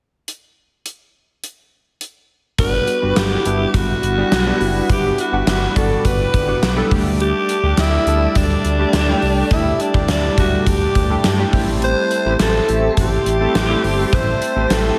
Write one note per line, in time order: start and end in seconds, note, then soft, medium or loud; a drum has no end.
0.28 closed hi-hat medium
0.86 closed hi-hat medium
1.44 closed hi-hat medium
2.01 closed hi-hat medium
2.58 2.79 G1 loud
2.58 14.99 G3 medium
2.58 2.91 G3 medium
2.58 2.91 B3 medium
2.58 2.91 D4 medium
2.58 2.91 F#4 medium
2.58 3.19 B4 loud
2.58 6.88 F#5 medium
2.58 6.87 B5 medium
2.58 11.49 D6 medium
2.58 kick loud
2.58 closed hi-hat medium
2.87 closed hi-hat medium
3.02 3.13 G1 medium
3.02 3.34 G3 medium
3.02 3.34 B3 medium
3.02 3.34 D4 medium
3.02 3.34 F#4 medium
3.16 3.37 G1 medium
3.16 3.78 G4 loud
3.16 snare loud
3.16 closed hi-hat medium
3.45 3.66 G1 loud
3.45 3.98 G3 medium
3.45 3.98 B3 medium
3.45 3.98 D4 medium
3.45 3.98 E4 medium
3.45 closed hi-hat medium
3.74 3.95 G1 loud
3.74 4.91 F#4 loud
3.74 kick medium
3.74 closed hi-hat medium
4.03 4.24 G1 loud
4.03 closed hi-hat medium
4.17 4.38 G3 medium
4.17 4.39 B3 medium
4.17 4.39 D4 medium
4.17 4.39 G4 medium
4.31 4.52 B1 medium
4.31 snare loud
4.31 closed hi-hat medium
4.46 4.78 G3 medium
4.46 4.78 B3 medium
4.46 4.78 D4 medium
4.46 4.78 E4 medium
4.60 4.81 F#1 medium
4.60 open hi-hat medium
4.90 5.10 G1 loud
4.90 5.21 G3 medium
4.90 5.21 B3 medium
4.90 5.21 D4 medium
4.90 5.22 F#4 medium
4.90 5.18 G4 medium
4.90 kick loud
4.90 closed hi-hat medium
5.18 5.46 F#4 medium
5.18 closed hi-hat medium
5.32 5.43 G1 medium
5.32 5.64 G3 medium
5.32 5.64 B3 medium
5.32 5.65 D4 medium
5.32 5.65 F#4 medium
5.47 5.68 G1 loud
5.47 5.75 F#4 medium
5.47 snare loud
5.47 closed hi-hat medium
5.75 5.97 G1 loud
5.75 6.28 G3 medium
5.75 6.29 B3 medium
5.75 6.29 D4 medium
5.75 6.29 F#4 medium
5.75 6.07 A4 medium
5.75 kick medium
5.75 closed hi-hat medium
6.05 6.26 G1 loud
6.05 6.92 B4 medium
6.05 kick medium
6.05 closed hi-hat medium
6.34 6.55 G1 loud
6.34 kick medium
6.34 closed hi-hat medium
6.48 6.69 G3 medium
6.48 6.69 B3 medium
6.48 6.69 D4 medium
6.48 6.69 F#4 medium
6.62 6.83 B1 medium
6.62 snare loud
6.62 closed hi-hat medium
6.76 6.90 G3 medium
6.76 6.91 B3 medium
6.76 6.91 D4 medium
6.76 6.92 A4 medium
6.91 7.33 D2 loud
6.91 7.49 G3 medium
6.91 7.49 A3 medium
6.91 7.49 D4 medium
6.91 7.50 G4 medium
6.91 11.49 D5 medium
6.91 14.99 A5 medium
6.91 kick loud
6.91 open hi-hat medium
7.20 7.81 G4 loud
7.20 closed hi-hat medium
7.49 closed hi-hat medium
7.63 7.74 D2 medium
7.63 7.95 G3 medium
7.63 7.95 A3 medium
7.63 7.95 D4 medium
7.63 7.96 G4 medium
7.77 7.98 D2 loud
7.77 8.39 E4 loud
7.77 snare loud
7.77 closed hi-hat medium
8.06 8.27 D2 medium
8.06 8.60 G3 medium
8.06 8.60 A3 medium
8.06 8.60 D4 medium
8.06 8.60 A4 medium
8.06 closed hi-hat medium
8.35 8.56 D2 loud
8.35 9.52 D4 medium
8.35 kick medium
8.35 closed hi-hat medium
8.64 8.85 D2 loud
8.64 closed hi-hat medium
8.79 9.00 G3 medium
8.79 9.00 A3 medium
8.79 9.00 D4 medium
8.79 9.01 G4 medium
8.93 9.14 D2 medium
8.93 snare loud
8.93 closed hi-hat medium
9.08 9.39 G3 medium
9.08 9.40 A3 medium
9.08 9.40 D4 medium
9.08 9.40 G4 medium
9.22 9.43 C2 loud
9.22 open hi-hat medium
9.51 9.72 D2 loud
9.51 9.83 G3 medium
9.51 9.83 A3 medium
9.51 9.83 D4 medium
9.51 9.83 E4 medium
9.51 kick loud
9.51 closed hi-hat medium
9.80 10.10 D4 medium
9.80 closed hi-hat medium
9.94 10.05 D2 medium
9.94 10.26 G3 medium
9.94 10.26 A3 medium
9.94 10.26 D4 medium
9.94 10.27 G4 medium
9.94 kick medium
10.08 10.30 D2 loud
10.08 10.36 D4 medium
10.08 snare loud
10.08 closed hi-hat medium
10.38 10.58 D2 medium
10.38 10.90 G3 medium
10.38 10.91 A3 medium
10.38 10.91 D4 medium
10.38 10.71 F#4 medium
10.38 10.91 G4 medium
10.38 kick medium
10.38 closed hi-hat medium
10.66 10.87 D2 loud
10.66 11.54 G4 medium
10.66 kick medium
10.66 closed hi-hat medium
10.95 11.16 D2 loud
10.95 kick medium
10.95 closed hi-hat medium
11.10 11.31 G3 medium
11.10 11.31 A3 medium
11.10 11.31 D4 medium
11.10 11.32 G4 medium
11.24 11.45 G2 medium
11.24 snare loud
11.24 closed hi-hat medium
11.39 11.53 G3 medium
11.39 11.52 A3 medium
11.39 11.54 D4 medium
11.39 11.53 G4 medium
11.53 11.94 A1 loud
11.53 12.11 A3 medium
11.53 12.11 C4 medium
11.53 12.11 E4 medium
11.53 12.11 G4 medium
11.53 14.99 E5 medium
11.53 14.99 C6 medium
11.53 kick medium
11.53 open hi-hat medium
11.82 12.37 C5 loud
11.82 closed hi-hat medium
12.11 closed hi-hat medium
12.25 12.36 A1 medium
12.25 12.57 A3 medium
12.25 12.57 C4 medium
12.25 12.57 E4 medium
12.25 12.57 G4 medium
12.39 12.61 A1 loud
12.39 12.94 A4 medium
12.39 snare loud
12.39 closed hi-hat medium
12.68 12.89 A1 medium
12.68 13.21 A3 medium
12.68 13.21 C4 medium
12.68 13.21 E4 medium
12.68 13.22 G4 medium
12.68 closed hi-hat medium
12.97 13.18 A1 loud
12.97 14.16 G4 medium
12.97 kick medium
12.97 closed hi-hat medium
13.26 13.47 A1 medium
13.26 closed hi-hat medium
13.41 13.62 A3 medium
13.41 13.62 C4 medium
13.41 13.62 E4 medium
13.41 13.62 A4 medium
13.55 13.76 A1 medium
13.55 snare loud
13.55 closed hi-hat medium
13.69 14.01 A3 medium
13.69 14.01 C4 medium
13.69 14.01 E4 medium
13.69 14.02 G4 medium
13.84 14.05 G1 loud
13.84 open hi-hat medium
14.13 14.34 A1 loud
14.13 14.44 A3 medium
14.13 14.44 C4 medium
14.13 14.45 E4 medium
14.13 14.45 G4 medium
14.13 14.74 C5 loud
14.13 kick loud
14.13 closed hi-hat medium
14.42 closed hi-hat medium
14.56 14.66 A1 medium
14.56 14.87 A3 medium
14.56 14.88 C4 medium
14.56 14.88 E4 medium
14.56 14.88 G4 medium
14.70 14.91 A1 loud
14.70 14.99 A4 medium
14.70 snare loud
14.70 closed hi-hat medium